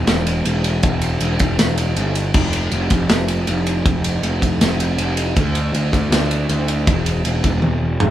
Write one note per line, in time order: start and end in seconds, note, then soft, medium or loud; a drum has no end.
0.06 0.41 E1 loud
0.06 snare loud
0.06 ride medium
0.27 ride medium
0.45 0.79 E1 medium
0.45 ride loud
0.64 ride medium
0.83 1.18 E1 medium
0.83 kick loud
0.83 ride loud
1.02 ride medium
1.20 1.38 E1 medium
1.20 ride loud
1.39 1.57 E1 loud
1.39 kick medium
1.39 ride medium
1.58 1.93 E1 loud
1.58 snare loud
1.58 ride loud
1.78 ride medium
1.96 2.31 G1 loud
1.96 ride loud
2.15 ride medium
2.34 2.69 F1 loud
2.34 kick loud
2.34 crash loud
2.53 ride medium
2.72 2.89 F1 medium
2.72 ride loud
2.90 3.08 F1 loud
2.90 kick medium
2.90 ride medium
3.09 3.43 F1 loud
3.09 snare loud
3.09 ride loud
3.28 ride medium
3.47 3.82 F1 medium
3.47 ride loud
3.67 ride medium
3.85 4.20 F1 loud
3.85 kick loud
3.85 ride loud
4.04 ride medium
4.23 4.40 F1 medium
4.23 ride loud
4.42 4.59 F1 loud
4.42 kick medium
4.42 ride medium
4.61 4.95 F1 loud
4.61 snare loud
4.61 ride loud
4.80 ride medium
4.98 5.33 F1 medium
4.98 ride loud
5.17 ride medium
5.36 5.71 D2 loud
5.36 kick loud
5.36 ride loud
5.55 ride medium
5.73 5.91 D2 medium
5.73 ride loud
5.93 6.10 D2 loud
5.93 kick medium
5.93 ride medium
6.11 6.45 D2 loud
6.11 snare loud
6.11 ride loud
6.31 ride medium
6.49 6.89 D2 loud
6.49 ride loud
6.68 ride medium
6.87 7.21 E1 loud
6.87 kick loud
6.87 ride loud
7.06 ride medium
7.25 7.42 E1 medium
7.25 ride loud
7.44 7.61 E1 medium
7.44 kick medium
7.44 ride medium
7.62 7.97 E1 loud
7.62 high tom medium
8.00 8.11 E1 loud
8.00 mid tom loud